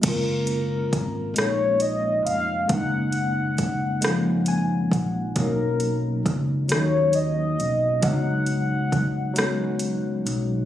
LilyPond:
<<
  \new Staff \with { instrumentName = "Soft synth lead" } { \time 6/8 \key fis \major \tempo 4. = 45 ais'4. cis''8 dis''8 eis''8 | fis''2~ fis''8 r8 | ais'4 r8 cis''8 dis''4 | fis''2 r4 | }
  \new Staff \with { instrumentName = "Tine electric piano" } { \time 6/8 \key fis \major r2. | r2 gis''8 fis''8 | r2. | r2. | }
  \new Staff \with { instrumentName = "Tine electric piano" } { \time 6/8 \key fis \major <gis ais cis' eis'>4 r8 <gis ais cis' dis'>4 r8 | <gis ais cis' dis'>4 r8 <eis gis ais cis'>4 r8 | <fis ais cis' dis'>4 r8 <fis ais cis' dis'>4 r8 | <fis gis b d' dis'>4 r8 <fis gis b cis'>4 r8 | }
  \new Staff \with { instrumentName = "Fingered electric bass" } { \clef bass \time 6/8 \key fis \major fis,,4 gis,,8 ais,,4 eis,,8 | fis,,2~ fis,,8 ais,,8 | b,,4 cis,8 dis,4 b,,8 | cis,2~ cis,8 b,,8 | }
  \new DrumStaff \with { instrumentName = "Drums" } \drummode { \time 6/8 <cymc hh bd>8 hh8 <hh bd>8 <hh ss>8 hh8 hh8 | <hh bd>8 hh8 <hh bd>8 <hh ss>8 hh8 <hh bd>8 | <hh bd>8 hh8 <hh bd>8 <hh ss>8 hh8 hh8 | <hh bd>8 hh8 <hh bd>8 <hh ss>8 hh8 hh8 | }
>>